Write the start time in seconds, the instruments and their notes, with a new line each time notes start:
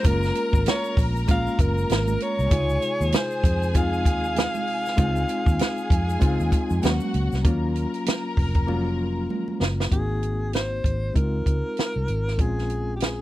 Already playing: reed electric piano G#3 A3 A#3 C#4 F4, string section A#4 A#5
0.03 fingered electric bass F#1, reed electric piano G#3 A#3 C#4 F4, alto saxophone A#4, kick, closed hi-hat, muted conga, shaker
0.23 snare, shaker
0.35 closed hi-hat, shaker
0.53 fingered electric bass G#1, kick, shaker
0.66 alto saxophone C#5, snare, closed hi-hat, high conga, shaker
0.84 shaker
0.97 fingered electric bass A#1, kick, open hi-hat, shaker
1.16 shaker
1.27 reed electric piano G#3 A#3 C#4 F4, kick, closed hi-hat, muted conga, shaker
1.31 alto saxophone F5
1.47 shaker
1.59 fingered electric bass F#1, alto saxophone A#4, kick, closed hi-hat, shaker
1.78 shaker
1.89 fingered electric bass G#1, snare, closed hi-hat, high conga, shaker
2.08 high conga, shaker
2.20 alto saxophone C#5, closed hi-hat
2.39 fingered electric bass C2, shaker
2.50 fingered electric bass C#2, reed electric piano C3 G#3 D#4 F4, string section G#4 G#5, kick, closed hi-hat, muted conga, shaker
2.69 shaker
2.82 closed hi-hat, shaker
3.01 fingered electric bass D#2, shaker
3.12 alto saxophone C5, snare, closed hi-hat, high conga, shaker
3.31 shaker
3.44 fingered electric bass F2, kick, closed hi-hat, shaker
3.63 shaker
3.73 reed electric piano G#3 C4 D#4 F4, alto saxophone F5, kick, closed hi-hat, muted conga, shaker
3.94 shaker
4.05 fingered electric bass D#2, kick, closed hi-hat, shaker
4.24 shaker
4.36 snare, closed hi-hat, high conga, shaker
4.54 high conga, shaker
4.67 open hi-hat
4.86 snare, shaker
4.96 fingered electric bass C#2, reed electric piano G#3 C4 D#4 F4, kick, closed hi-hat, muted conga, shaker
5.16 shaker
5.28 closed hi-hat, shaker
5.46 fingered electric bass D#2, kick, shaker
5.59 string section G#4 G#5, snare, closed hi-hat, high conga, shaker
5.77 shaker
5.90 fingered electric bass F2, kick, closed hi-hat, shaker
6.09 shaker
6.20 fingered electric bass C#2, reed electric piano G#3 C4 D#4 F4, kick, closed hi-hat, muted conga, shaker
6.40 fingered electric bass D#2, shaker
6.52 kick, closed hi-hat, muted conga, shaker
6.70 fingered electric bass F2, shaker
6.82 fingered electric bass D#2, reed electric piano F#3 A#3 C#4 F#4, string section F#4 F#5, snare, closed hi-hat, high conga, shaker
7.00 high conga, shaker
7.14 fingered electric bass C#2, closed hi-hat
7.32 fingered electric bass C2, snare, shaker
7.44 fingered electric bass D#2, reed electric piano F3 A#3 C#4 F4, string section A#4 A#5, kick, closed hi-hat, muted conga
7.50 reed electric piano F#3
7.75 closed hi-hat
7.94 closed hi-hat
8.06 snare, closed hi-hat, high conga
8.37 fingered electric bass F1, kick, open hi-hat
8.54 kick, closed hi-hat
8.66 reed electric piano F3 A#3 C#4 F4, muted conga
8.73 reed electric piano F#3
9.30 high conga
9.48 high conga
9.61 fingered electric bass F#1, snare
9.80 snare
9.90 fingered electric bass G#1, reed electric piano A#3 C4 D#4 F#4, alto saxophone G#4, kick, closed hi-hat
10.23 closed hi-hat
10.53 alto saxophone C5, snare, closed hi-hat
10.84 fingered electric bass G#1, kick, closed hi-hat
11.13 fingered electric bass C#2, reed electric piano G#3 C4 D#4 E4, alto saxophone A#4, kick, closed hi-hat
11.22 reed electric piano F4
11.46 fingered electric bass C#2, kick, closed hi-hat
11.77 snare, closed hi-hat
11.96 fingered electric bass C2
12.08 fingered electric bass G#1, closed hi-hat
12.28 snare
12.37 fingered electric bass A#1, reed electric piano G#3 C4 C#4 F4, alto saxophone G#4, kick, closed hi-hat
12.58 snare
12.70 closed hi-hat
12.96 alto saxophone G4
13.00 alto saxophone G#4, snare, closed hi-hat